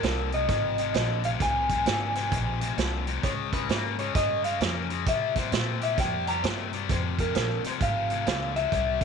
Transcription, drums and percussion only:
0.03 snare loud
0.03 closed hi-hat medium
0.32 closed hi-hat soft
0.49 kick loud
0.49 snare soft
0.49 closed hi-hat medium
0.78 closed hi-hat medium
0.94 snare loud
0.94 closed hi-hat medium
1.24 closed hi-hat medium
1.40 kick loud
1.40 snare soft
1.40 closed hi-hat medium
1.69 kick medium
1.69 closed hi-hat medium
1.86 snare loud
1.86 closed hi-hat medium
2.15 snare soft
2.15 closed hi-hat medium
2.32 kick loud
2.32 closed hi-hat medium
2.61 closed hi-hat medium
2.78 snare loud
2.78 closed hi-hat medium
3.07 closed hi-hat medium
3.23 kick loud
3.23 snare soft
3.23 closed hi-hat medium
3.53 kick medium
3.53 closed hi-hat medium
3.69 snare loud
3.69 closed hi-hat medium
3.99 closed hi-hat medium
4.15 kick loud
4.15 snare soft
4.15 closed hi-hat medium
4.44 closed hi-hat medium
4.61 snare loud
4.61 closed hi-hat medium
4.90 closed hi-hat medium
5.06 kick loud
5.06 snare soft
5.06 closed hi-hat medium
5.36 kick medium
5.36 snare soft
5.36 closed hi-hat medium
5.52 snare loud
5.52 closed hi-hat medium
5.81 closed hi-hat medium
5.98 kick loud
5.98 snare soft
5.98 closed hi-hat medium
6.27 closed hi-hat medium
6.44 snare loud
6.44 closed hi-hat medium
6.73 closed hi-hat medium
6.89 kick loud
6.89 snare soft
6.89 closed hi-hat medium
7.19 kick medium
7.19 closed hi-hat medium
7.35 snare medium
7.35 closed hi-hat medium
7.64 snare soft
7.64 closed hi-hat medium
7.81 kick loud
7.81 closed hi-hat medium
8.10 closed hi-hat medium
8.26 snare loud
8.26 closed hi-hat medium
8.56 closed hi-hat medium
8.72 kick loud
8.72 closed hi-hat medium
9.01 kick medium
9.01 closed hi-hat medium

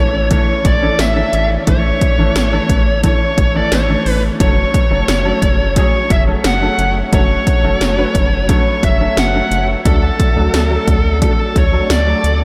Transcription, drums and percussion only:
0.31 kick medium
0.31 closed hi-hat medium
0.65 kick loud
0.65 closed hi-hat medium
0.99 snare loud
0.99 closed hi-hat medium
0.99 tambourine medium
1.33 closed hi-hat medium
1.67 kick loud
1.67 closed hi-hat medium
2.01 kick medium
2.01 closed hi-hat medium
2.36 snare loud
2.36 closed hi-hat medium
2.36 tambourine medium
2.69 kick medium
2.69 closed hi-hat medium
3.04 kick medium
3.04 closed hi-hat medium
3.38 kick loud
3.38 closed hi-hat medium
3.72 snare loud
3.72 closed hi-hat medium
3.72 tambourine medium
4.06 open hi-hat medium
4.40 kick loud
4.40 closed hi-hat medium
4.74 kick medium
4.74 closed hi-hat medium
5.08 snare loud
5.08 closed hi-hat medium
5.08 tambourine medium
5.42 kick medium
5.42 closed hi-hat medium
5.76 kick medium
5.76 closed hi-hat medium
6.10 kick loud
6.10 closed hi-hat medium
6.44 snare loud
6.44 closed hi-hat medium
6.44 tambourine medium
6.79 closed hi-hat medium
7.13 kick loud
7.13 closed hi-hat medium
7.47 kick medium
7.47 closed hi-hat medium
7.81 snare loud
7.81 closed hi-hat medium
7.81 tambourine medium
8.15 kick medium
8.15 closed hi-hat medium
8.49 kick medium
8.49 closed hi-hat medium
8.83 kick medium
8.83 closed hi-hat medium
9.17 snare loud
9.17 closed hi-hat medium
9.17 tambourine medium
9.52 closed hi-hat medium
9.85 kick loud
9.85 closed hi-hat medium
10.20 kick medium
10.20 closed hi-hat medium
10.54 snare loud
10.54 closed hi-hat medium
10.54 tambourine medium
10.88 kick medium
10.88 closed hi-hat medium
11.22 kick medium
11.22 closed hi-hat medium
11.56 kick loud
11.56 closed hi-hat medium
11.90 snare loud
11.90 closed hi-hat medium
11.90 tambourine medium
12.24 closed hi-hat medium

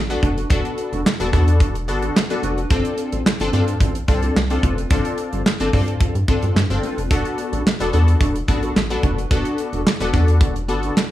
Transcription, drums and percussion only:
0.10 closed hi-hat soft
0.23 kick medium
0.23 closed hi-hat medium
0.38 closed hi-hat medium
0.50 kick loud
0.50 closed hi-hat medium
0.65 closed hi-hat soft
0.78 closed hi-hat medium
0.93 closed hi-hat medium
1.06 snare loud
1.06 clap medium
1.20 closed hi-hat soft
1.33 kick medium
1.33 closed hi-hat medium
1.48 closed hi-hat medium
1.60 kick loud
1.60 closed hi-hat medium
1.75 closed hi-hat medium
1.88 closed hi-hat medium
2.02 closed hi-hat medium
2.16 snare loud
2.16 clap medium
2.30 closed hi-hat medium
2.43 closed hi-hat medium
2.58 closed hi-hat medium
2.70 kick loud
2.70 closed hi-hat medium
2.85 closed hi-hat medium
2.98 closed hi-hat medium
3.12 closed hi-hat medium
3.26 snare loud
3.26 clap medium
3.40 closed hi-hat soft
3.53 closed hi-hat medium
3.68 closed hi-hat medium
3.81 kick loud
3.81 closed hi-hat medium
3.95 closed hi-hat medium
4.08 kick loud
4.08 closed hi-hat medium
4.23 closed hi-hat soft
4.36 snare loud
4.36 clap medium
4.50 closed hi-hat soft
4.63 kick medium
4.63 closed hi-hat medium
4.78 closed hi-hat medium
4.90 kick loud
4.90 closed hi-hat loud
5.05 closed hi-hat medium
5.18 closed hi-hat medium
5.33 closed hi-hat medium
5.46 snare loud
5.46 clap medium
5.60 closed hi-hat medium
5.73 kick medium
5.73 open hi-hat medium
5.88 closed hi-hat medium
6.01 kick loud
6.01 closed hi-hat medium
6.15 closed hi-hat soft
6.28 kick loud
6.28 closed hi-hat medium
6.42 closed hi-hat medium
6.56 snare loud
6.56 clap medium
6.70 closed hi-hat medium
6.83 closed hi-hat medium
6.98 closed hi-hat medium
7.11 kick loud
7.11 closed hi-hat loud
7.25 closed hi-hat soft
7.38 closed hi-hat medium
7.53 closed hi-hat medium
7.67 snare loud
7.67 clap medium
7.80 closed hi-hat medium
7.93 closed hi-hat medium
8.08 closed hi-hat medium
8.21 kick loud
8.21 closed hi-hat medium
8.35 closed hi-hat medium
8.48 kick loud
8.48 closed hi-hat medium
8.63 closed hi-hat medium
8.76 snare loud
8.76 clap medium
8.90 closed hi-hat soft
9.03 kick medium
9.03 closed hi-hat medium
9.18 closed hi-hat medium
9.31 kick loud
9.31 closed hi-hat loud
9.45 closed hi-hat soft
9.58 closed hi-hat medium
9.73 closed hi-hat medium
9.87 snare loud
9.87 clap medium
10.00 closed hi-hat soft
10.13 kick medium
10.13 closed hi-hat medium
10.28 closed hi-hat medium
10.41 kick loud
10.41 closed hi-hat medium
10.56 closed hi-hat medium
10.69 closed hi-hat medium
10.83 closed hi-hat medium
10.97 snare loud
10.97 clap medium

